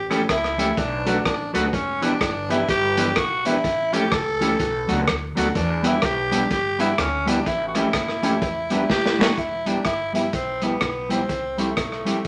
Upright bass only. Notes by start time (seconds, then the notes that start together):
Already playing: A1
0.30 C#2
0.78 B1
1.26 A1
1.55 D2
1.74 E1
2.21 G1
2.69 G1
3.17 B1
3.65 A1
4.12 C#2
4.60 B1
4.89 C#2
5.08 D2
5.37 D2
5.56 E2
6.03 B1
6.51 G1
6.99 D2
7.47 A1
7.94 F#1
8.42 E1
8.90 G1
9.20 F#1
9.38 E1
9.85 G1
10.34 B1
10.82 B1
11.30 C2
11.77 B1
12.07 A1